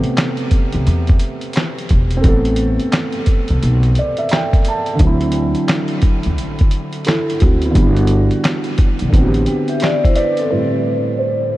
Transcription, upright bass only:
0.74 C2
0.87 E2
1.91 E1
2.25 A1
3.50 C2
3.63 B1
5.00 D2
6.26 E2
6.39 A1
7.43 D2
7.76 G1
9.02 B1
9.13 A1

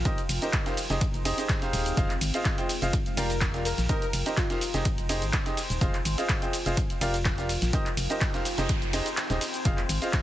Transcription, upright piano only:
0.05 D#4 G4 A#4 C5 D#5
0.42 D#4 G4 A#4 C5 D#5
0.66 D#4 G4 A#4 C5 F5
0.90 D#4 G4 G#4 C5 D#5
1.25 D#4 G4 G#4 C5 D#5
1.38 D#4 G4 G#4 C5 D#5
1.62 D#4 G4 G#4 C5 F5
1.97 F4 G#4 C5 D#5 F5
2.34 F4 G#4 C5 D#5 F5
2.58 F4 G#4 C5 D#5 G5
2.82 F4 G#4 C5 D#5 F5
3.17 F4 G4 A#4 D5 F5
3.54 F4 G4 A#4 D5 F5
3.89 D#4 G4 A#4 C5 D#5
4.26 D#4 G4 A#4 C5 D#5
4.50 D#4 G4 A#4 C5 F5
4.74 D#4 G4 G#4 C5 D#5
5.09 D#4 G4 G#4 C5 D#5
5.46 D#4 G4 G#4 C5 D#5
5.81 F4 G#4 C5 D#5 F5
6.18 F4 G#4 C5 D#5 F5
6.42 F4 G#4 C5 D#5 G5
6.66 F4 G#4 C5 D#5 F5
7.01 F4 G4 A#4 D5 F5
7.38 F4 G4 A#4 D5 F5
7.73 D#4 G4 A#4 C5 D#5
8.10 D#4 G4 A#4 C5 D#5
8.34 D#4 G4 A#4 C5 F5
8.58 D#4 G4 G#4 C5 D#5
8.93 D#4 G4 G#4 C5 D#5
9.30 D#4 G4 G#4 C5 D#5
9.65 F4 G#4 C5 D#5 F5
10.02 F4 G#4 C5 D#5 F5

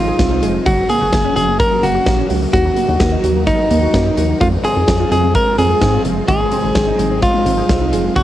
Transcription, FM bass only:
Already playing: G#1
0.19 C2
0.43 F1
0.66 F#1
1.01 F#1
1.13 F#1
1.36 F#1
1.83 F#1
2.07 A#1
2.30 C#2
2.54 D#2
2.89 D#2
3.00 D#2
3.24 D#2
3.71 D#2
3.94 F#2
4.18 D#2
4.41 F2
4.76 F2
4.88 F2
5.11 F2
5.58 F2
5.82 G#2
6.05 F#1
6.29 G#1
6.64 G#1
6.75 G#1
6.99 G#1
7.46 G#1
7.69 C2
7.93 F1
8.16 F#1

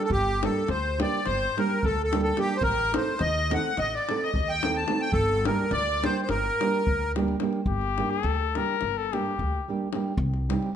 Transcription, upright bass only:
0.11 G1
0.69 D2
1.27 G1
1.84 D2
2.62 A1
3.21 D#2
3.78 A1
4.35 D#2
5.13 G1
5.71 D2
6.29 G1
6.87 D2
7.66 G1
8.24 D2
8.82 G1
9.39 D2
10.17 C2

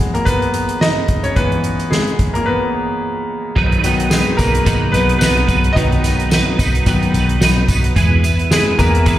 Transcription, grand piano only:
Already playing: E3 F#3 G#3 B3 F#4 G#4
0.14 A#3 A#4
0.25 B3 B4
0.81 D#4 D#5
1.23 C#4 C#5
1.36 E3 G#3 B3 B4
1.91 G#3 G#4
2.34 A#3 A#4
2.46 B3 B4
3.84 D#3 F#3 B3
4.10 G#3 G#4
4.37 A#3 A#4
4.92 B3 B4
5.18 B3 B4
5.73 D#3 F#3 B3 D#5
5.77 D#4
6.86 D#3 F#3 B3
8.51 G#3 G#4
8.78 E3 G#3 A#3 B3 A#4

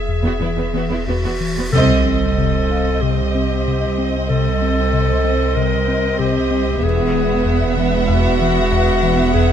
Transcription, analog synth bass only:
0.08 E2
0.42 E3
0.74 E3
1.08 E2
1.41 E3
1.73 C3
2.06 C4
2.38 C3
2.70 C4
3.02 C3
3.35 C4
3.67 C3
3.98 C4
4.30 C3
4.62 C4
4.93 C3
5.25 C4
5.56 C3
5.88 C4
6.19 C3
6.51 C4
6.82 E2
7.13 E3
7.45 E2
7.77 E3
8.09 E2
8.41 E3
8.72 E2
9.03 E3
9.35 E2

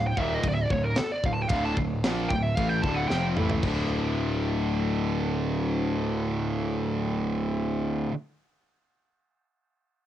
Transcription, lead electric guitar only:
0.07 G5
0.20 E5
0.34 D#5
0.48 D5
0.54 E5
0.64 D5
0.71 C#5
0.83 A#4
0.98 A4
1.12 D5
1.25 F5
1.33 A5
1.42 G5
1.49 F5
1.65 A5
2.29 G5
2.43 E5
2.57 F5
2.69 G5
2.82 A5
2.94 F#5
3.08 G5

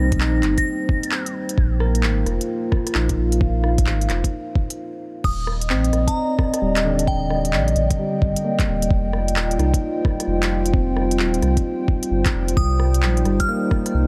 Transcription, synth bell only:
Already playing: A#6
0.58 A#6
5.25 D#6
6.07 A#5
7.08 G5
12.57 D#6
13.40 F6
13.49 F6

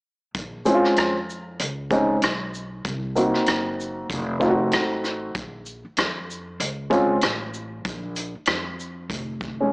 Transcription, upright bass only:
0.35 A#1
0.84 muted upright bass stroke
0.97 F2
1.60 C#2
2.22 B1
2.85 C2
3.34 muted upright bass stroke
3.48 F#1
4.10 F1
4.73 A1
5.35 A#1
5.85 muted upright bass stroke
5.98 F2
6.60 C#2
7.23 A1
7.85 A#1
8.35 muted upright bass stroke
8.48 F2
9.10 F1

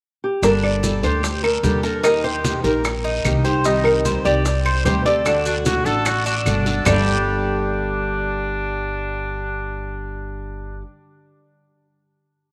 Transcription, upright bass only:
0.42 G1
1.03 D2
1.63 D#2
2.64 A#1
3.25 C2
4.25 C2
4.85 D2
5.85 A1
6.45 G1
6.85 G1

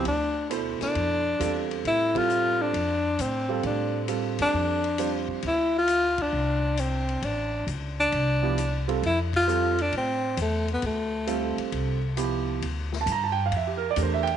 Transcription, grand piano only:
0.50 B2 E4 A4 C5
1.39 G3 C4 F4 A4
2.15 G3 C4 F4 A4
3.49 G3 C4 F4 A4
4.08 G3 C4 F4 A4
4.98 G3 C4 F4 C5
8.42 F3 B3 E4 G4
8.88 G3 C4 F4 A4
9.47 G3 C4 F4 A4
11.27 G3 C4 F4 A4
12.17 F3 B3 E4 G4
13.01 A5
13.12 A#5
13.24 A5
13.32 G5
13.46 F5
13.57 E5
13.67 G4
13.77 A#4
13.91 D5
13.96 A3 D4 G4 A#4
14.03 C5
14.14 E5
14.23 G5

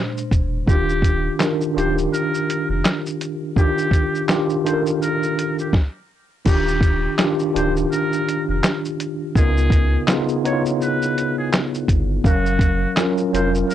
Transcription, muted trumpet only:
0.69 G4
1.78 C5
2.14 A#4
2.71 A#4
3.58 G4
4.67 C5
5.03 A#4
5.60 G4
6.48 G4
7.57 C5
7.92 A#4
8.50 A#4
9.38 G#4
10.46 C#5
10.82 B4
11.38 G#4
12.27 F#4
13.35 C5
13.70 A#4

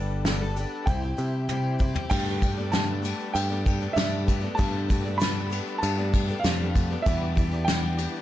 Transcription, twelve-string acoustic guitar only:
Already playing: G2 D3 G3 B3 D4 A4
0.26 G2 D3 G3 B3 D4 A4
0.40 G3 B3 D4 A4
0.56 G3 B3 D4 A4
0.87 C3 G3 C4 E4 G4
1.02 C4 E4 G4
1.17 G3 C4 E4 G4
1.49 C3 G3 C4 E4 G4
1.79 G3 C4 E4 G4
1.94 C4 E4 G4
2.09 G2 D3 A3 B3 D4 G4
2.41 A3 B3 D4 G4
2.57 A3 B3 D4 G4
2.72 G2 D3 A3 B3 D4 G4
3.02 A3 B3 D4 G4
3.49 A3 B3 D4 G4
3.80 A3 B3 D4 G4
3.96 G2 D3 A3 B3 D4 G4
4.27 A3 B3 D4 G4
4.41 A3 B3 D4 G4
4.57 G2 D3 A3 B3 D4 G4
4.89 A3 B3 D4 G4
5.04 A3 B3 D4 G4
5.19 G2 D3 A3 B3 D4 G4
5.50 A3 B3 D4 G4
5.97 A3 B3 D4 G4
6.27 A3 B3 D4 G4
6.43 G2 D3 A3 B3 D4 G4
6.75 A3 B3 D4 G4
6.90 A3 B3 D4 G4
7.06 E3 G3 B3 D4 G4
7.35 G3 B3 D4 G4
7.51 B3 D4 G4
7.67 E3 G3 B3 D4 G4
7.98 G3 B3 D4 G4

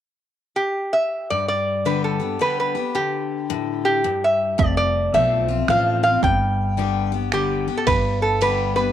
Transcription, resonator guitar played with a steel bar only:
0.56 G4
0.93 E5
1.30 D5
1.48 D5
1.86 B4
2.04 A4
2.41 B4
2.60 B4
2.95 G4
3.85 G4
4.24 E5
4.59 D5
4.77 D5
5.14 E5
5.70 F5
6.03 F5
6.24 G5
7.33 G4
7.77 A4
7.87 B4
8.22 A4
8.42 B4
8.76 B4

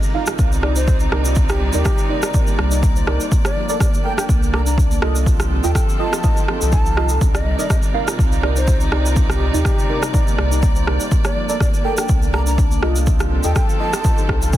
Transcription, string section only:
Already playing: C3 G3 D#4 D5
3.32 A#3
5.26 F3 C4 G4 A4
7.22 C3 G3 D#4 D5
11.12 A#3
13.07 F3 C4 G4 A4

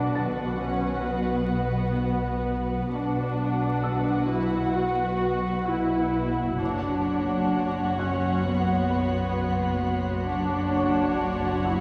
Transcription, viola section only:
Already playing: D4
0.60 C#4
1.06 B3
2.90 D4
4.28 E4
4.74 F#4
5.67 E4
6.60 D4
7.98 C#4
8.44 B3
10.30 D4
11.67 E4

